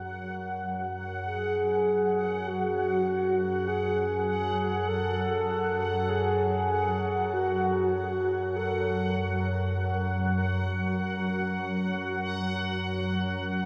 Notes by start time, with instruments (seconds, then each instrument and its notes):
Already playing: synth drone F#2 F#3, synth texture F#5
1.25 soft synth lead G#4
2.47 soft synth lead F#4
3.67 soft synth lead G#4
4.88 soft synth lead A4
6.09 soft synth lead G#4
7.33 soft synth lead F#4
8.56 soft synth lead A4